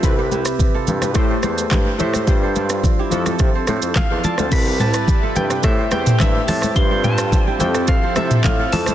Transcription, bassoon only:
X:1
M:4/4
L:1/16
Q:1/4=107
K:C
V:1 name="Bassoon" clef=bass
C,,3 z3 G,,2 A,,2 E,,2 G,,2 A,,2 | G,,4- G,, z F,,2 C, z A,, F,, z E,, z D,, | C,,3 z3 G,,2 A,,2 E,,2 G,,2 A,,2 | G,,4- G,, z F,,3 z C,2 A,,2 F,,2 |]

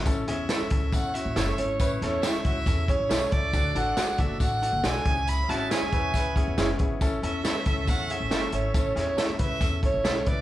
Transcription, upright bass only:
X:1
M:4/4
L:1/16
Q:1/4=138
K:A
V:1 name="Upright bass" clef=bass
A,,,2 E,,2 z2 C,,2 E,,3 A,,, F,,,2 G,,,2 | A,,,2 E,,2 z2 C,,2 E,,3 A,,, B,,,2 C,,2 | D,,2 A,,,2 z2 F,,,2 A,,,3 F,,, B,,,2 C,,2- | C,,2 G,,,2 z2 E,,2 C,,3 E,, F,,,2 G,,,2 |
A,,,2 E,,4 C,,2 E,,3 A,,, F,,,2 G,,,2 | A,,,2 E,,2 z2 C,,2 E,,3 A,,, B,,,2 C,,2 |]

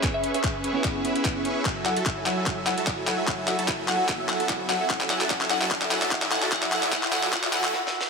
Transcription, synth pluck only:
X:1
M:4/4
L:1/16
Q:"Swing 16ths" 1/4=148
K:F#m
V:1 name="Synth pluck"
z e2 e3 z8 z2 | z2 f2 z2 f2 z2 f2 z2 f2 | z2 f2 z2 f2 z2 f2 z2 f2 | z2 f2 z2 f2 z2 f2 z2 f2 |
f2 f2 f2 f2 f2 f2 z4 |]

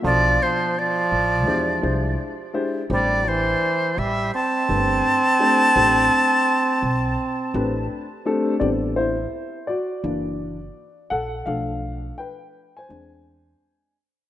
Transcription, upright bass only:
X:1
M:4/4
L:1/8
Q:"Swing 16ths" 1/4=84
K:Bphr
V:1 name="Upright bass" clef=bass
B,,, z2 A,,, E,, ^B,,, z2 | A,,,2 z A,,, z G,,, z2 | A,,, z2 B,,, z A,,, z2 | A,,,2 z2 F,,,2 z ^A,,, |
B,,,2 z2 E,,2 z2 |]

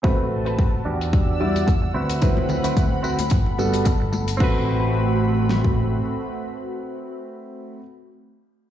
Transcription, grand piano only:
X:1
M:4/4
L:1/8
Q:"Swing 16ths" 1/4=110
K:Ador
V:1 name="Grand piano"
[A,CFB]3 z2 [G,EFd] z2 | [F,CEB]4 z [G,B,FA] z2 | [A,CFB]8- | [A,CFB]8 |]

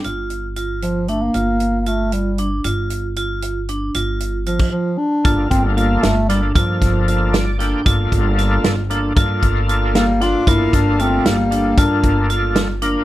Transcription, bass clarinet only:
X:1
M:5/8
L:1/16
Q:1/4=115
K:Gm
V:1 name="Bass clarinet"
z6 F,2 A, B,- | B,3- B,/2 B,/2 A,2 G,3 z | z8 z2 | z4 F,2 F,2 D2- |
D2 C2 B,2 A,2 G,2 | F,8 z2 | z8 z2 | z6 B,2 F2 |
=E2 D2 C2 B,4 | D4 z6 |]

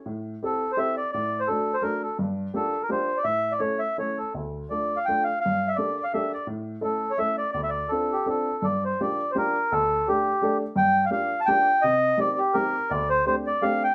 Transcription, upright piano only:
X:1
M:3/4
L:1/8
Q:"Swing" 1/4=168
K:Dm
V:1 name="Upright piano"
A,,2 [CEGA] z [CEGA] z | A,,2 [A,D^FA] z [A,DFA] z | G,,2 [B,DFG] z [B,DFG] z | A,,2 [A,^CEA] z [A,CEA] z |
D,,2 [A,DFA] z [A,DFA] z | G,,2 [B,DGA] z [B,DGA] z | A,,2 [A,^CEA] z [A,CEA] z | D,,2 [CDFA] z [CDFA] z |
[K:Gm] G,,2 [B,DFG] z [B,DFG] z | D,,2 [A,DGA] z [A,DGA] z | G,,2 [B,DFG] z [B,DFG] z | C,2 [B,CEG] z [B,CEG] z |
D,,2 [A,CDG] z [A,CDG] z |]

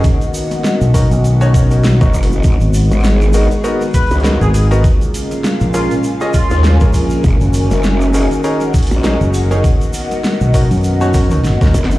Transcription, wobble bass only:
X:1
M:4/4
L:1/16
Q:"Swing 16ths" 1/4=100
K:Blyd
V:1 name="Wobble bass" clef=bass
z12 z F,,,3 | G,,, z2 G,,,4 z4 C,,2 z3 | z8 z3 D,,2 z3 | F,,, z2 F,,,4 z4 A,,,2 z3 |
z12 z2 F,,,2 |]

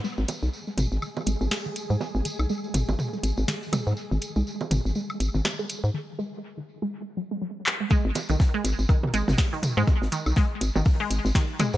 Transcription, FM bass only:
X:1
M:4/4
L:1/16
Q:"Swing 16ths" 1/4=122
K:G#m
V:1 name="FM bass" clef=bass
z G,,, z B,,, z2 G,,, G,,, z2 G,,, G,,, z3 G,, | z G,,, z B,,, z2 G,,, G,,, z2 G,,, G,,, z3 G,, | z G,,, z B,,, z2 G,,, G,,, z2 G,,, G,,, z3 G,, | z16 |
z G,,, z B,,, z2 G,,, G,,, z2 G,,, G,,, z3 G,, | z G,,, z B,,, z2 G,,, G,,, z2 G,,, G,,, z3 G,, |]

